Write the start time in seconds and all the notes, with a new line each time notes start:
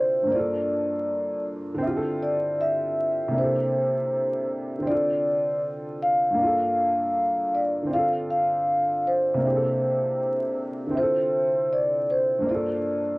Already playing: D3 C4 E4 F4 A4 C5
0.23 G2
0.27 A#3
0.31 D4 F4 D5
0.39 A4
1.74 D3 C4
1.82 E4
1.86 F4 G4
1.96 A4
2.22 D5
2.61 E5
3.28 C3 A#3
3.34 D4 E4
3.38 G4 C5
3.43 A4
4.79 D3 C4
4.87 D4 F4 D5
4.94 A4
6.02 F5
6.31 G2 A#3
6.39 D4
6.43 F4 A4
7.55 D5
7.83 D3
7.87 C4 D4
7.94 F4 F5
7.98 A4
8.30 F5
9.07 C5
9.34 C3 A#3
9.41 D4 E4
9.47 G4 G#4
9.56 A4
10.86 D3 C4
10.94 E4 F4 C5
11.02 A4
11.73 D5
12.10 C5
12.38 G2 A#3
12.46 D4 F4 D5
12.54 A4